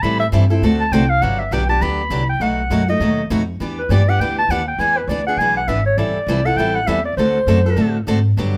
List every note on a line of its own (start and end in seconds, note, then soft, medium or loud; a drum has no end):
0.02 0.32 A2 medium
0.02 0.22 E3 medium
0.02 0.23 G3 medium
0.02 0.23 C4 medium
0.02 0.23 E4 medium
0.02 0.23 A4 medium
0.02 0.19 B5 loud
0.20 0.27 E5 loud
0.32 0.61 G2 medium
0.32 0.43 E3 medium
0.32 0.44 G3 medium
0.32 0.44 C4 medium
0.32 0.44 E4 medium
0.32 0.44 A4 medium
0.50 0.63 C4 medium
0.50 0.62 E4 medium
0.50 0.62 A4 medium
0.62 0.91 D2 medium
0.62 0.82 D3 medium
0.62 0.82 A3 medium
0.62 0.83 C4 medium
0.62 0.83 F#4 medium
0.62 0.83 A4 medium
0.80 0.94 A5 loud
0.92 1.21 C2 medium
0.92 1.03 D3 medium
0.92 1.03 A3 loud
0.92 1.03 C4 medium
0.92 1.04 F#4 medium
0.92 1.04 A4 loud
0.92 1.11 G5 loud
1.10 1.23 F5 loud
1.22 1.51 G1 medium
1.22 1.42 D3 medium
1.22 1.41 F#3 medium
1.22 1.42 B3 medium
1.22 1.42 D4 medium
1.22 1.42 G4 medium
1.22 1.41 F#5 medium
1.39 1.54 E5 medium
1.51 1.80 B1 medium
1.51 1.63 D3 medium
1.51 1.63 F#3 medium
1.51 1.63 B3 medium
1.51 1.63 D4 medium
1.51 1.63 G4 medium
1.51 1.69 G5 medium
1.69 1.81 B3 soft
1.69 1.81 D4 soft
1.69 1.81 G4 medium
1.69 1.84 A5 loud
1.81 2.09 D2 medium
1.81 2.01 D3 medium
1.81 2.01 F#3 medium
1.81 2.01 B3 medium
1.81 2.01 D4 medium
1.81 2.02 G4 medium
1.81 2.29 B5 medium
2.10 2.39 C2 medium
2.10 2.22 D3 medium
2.10 2.22 F#3 medium
2.10 2.22 B3 medium
2.10 2.22 D4 medium
2.10 2.22 G4 loud
2.29 2.43 G5 loud
2.40 2.69 B1 medium
2.40 2.60 B2 medium
2.40 2.61 F#3 medium
2.40 2.61 A3 medium
2.40 2.61 D#4 medium
2.40 2.61 F#4 medium
2.40 2.89 F#5 medium
2.70 2.99 F#2 medium
2.70 2.81 B2 medium
2.70 2.82 F#3 medium
2.70 2.82 A3 medium
2.70 2.82 D#4 medium
2.70 2.82 F#4 medium
2.88 3.01 A3 soft
2.88 3.00 D#4 medium
2.88 3.00 F#4 medium
2.88 3.28 D#5 loud
3.00 3.29 D#2 medium
3.00 3.20 B2 medium
3.00 3.20 F#3 medium
3.00 3.21 A3 medium
3.00 3.21 D#4 medium
3.00 3.21 F#4 medium
3.30 3.59 F2 medium
3.30 3.41 B2 medium
3.30 3.41 F#3 medium
3.30 3.41 A3 medium
3.30 3.42 D#4 medium
3.30 3.42 F#4 loud
3.60 3.89 E2 medium
3.60 3.80 E3 medium
3.60 3.80 B3 medium
3.60 3.80 D4 medium
3.60 3.81 G4 medium
3.79 3.93 B4 medium
3.89 4.18 G2 medium
3.89 4.01 E3 medium
3.89 4.01 B3 medium
3.89 4.02 D4 medium
3.89 4.02 G4 medium
3.89 4.11 D5 medium
4.09 4.20 B3 soft
4.09 4.20 D4 medium
4.09 4.20 G4 medium
4.09 4.22 F#5 loud
4.19 4.48 D2 medium
4.19 4.40 E3 medium
4.19 4.40 B3 medium
4.19 4.40 D4 medium
4.19 4.40 G4 medium
4.19 4.38 G5 medium
4.39 4.52 A5 loud
4.49 4.78 D#2 medium
4.49 4.61 E3 medium
4.49 4.61 B3 medium
4.49 4.61 D4 medium
4.49 4.61 G4 medium
4.49 4.67 F#5 loud
4.68 4.82 G5 loud
4.79 5.07 E2 medium
4.79 4.99 E3 medium
4.79 4.99 B3 medium
4.79 5.00 D4 medium
4.79 5.00 G#4 medium
4.79 4.99 G#5 loud
4.98 5.10 B4 medium
5.08 5.36 D2 medium
5.08 5.20 E3 medium
5.08 5.20 B3 medium
5.08 5.21 D4 medium
5.08 5.21 G#4 medium
5.08 5.26 D5 medium
5.27 5.39 B3 soft
5.27 5.39 D4 soft
5.27 5.39 G#4 medium
5.27 5.40 F#5 loud
5.37 5.67 B1 medium
5.37 5.59 E3 medium
5.37 5.59 B3 medium
5.37 5.56 G#5 loud
5.41 5.60 D4 medium
5.41 5.60 G#4 medium
5.57 5.70 F#5 loud
5.68 5.97 G#1 medium
5.68 5.79 E3 medium
5.68 5.80 B3 medium
5.68 5.79 D4 medium
5.68 5.80 G#4 medium
5.68 5.85 E5 medium
5.86 5.99 C#5 medium
5.97 6.14 A1 medium
5.97 6.18 E3 medium
5.97 6.18 G3 medium
5.97 6.18 C4 medium
5.97 6.18 E4 medium
5.97 6.18 A4 medium
5.97 6.47 D5 medium
6.15 muted upright bass stroke soft
6.27 6.56 C2 medium
6.27 6.39 E3 medium
6.27 6.39 G3 medium
6.27 6.39 C4 medium
6.27 6.40 E4 medium
6.27 6.40 A4 loud
6.45 6.58 C4 soft
6.45 6.58 E4 medium
6.45 6.57 A4 medium
6.45 6.59 F#5 loud
6.56 6.86 A1 medium
6.56 6.78 E3 medium
6.56 6.78 G3 medium
6.56 6.78 C4 medium
6.56 6.78 E4 medium
6.56 6.79 A4 medium
6.56 6.77 G5 medium
6.75 6.89 F#5 loud
6.87 7.16 E2 medium
6.87 6.98 E3 medium
6.87 6.98 G3 medium
6.87 6.99 C4 medium
6.87 6.99 E4 medium
6.87 6.99 A4 medium
6.87 7.05 E5 medium
7.05 7.17 D5 medium
7.17 7.46 D2 medium
7.17 7.37 D3 medium
7.17 7.38 A3 medium
7.17 7.38 C4 medium
7.17 7.38 F#4 medium
7.17 7.38 A4 medium
7.17 8.03 C5 medium
7.47 7.76 F#2 medium
7.47 7.58 D3 medium
7.47 7.58 A3 medium
7.47 7.59 C4 medium
7.47 7.59 F#4 medium
7.47 7.59 A4 medium
7.66 7.76 C4 soft
7.66 7.76 F#4 medium
7.66 7.76 A4 medium
7.76 8.06 A2 medium
7.76 7.96 D3 medium
7.76 7.97 A3 medium
7.76 7.97 C4 medium
7.76 7.97 F#4 medium
7.76 7.97 A4 medium
8.07 8.36 G#2 medium
8.07 8.18 D3 medium
8.07 8.18 A3 medium
8.07 8.18 C4 medium
8.07 8.19 F#4 medium
8.07 8.18 A4 loud
8.37 8.57 G2 medium
8.37 8.57 D3 medium
8.37 8.57 F#3 medium
8.37 8.57 B3 medium
8.37 8.57 D4 medium
8.37 8.57 G4 medium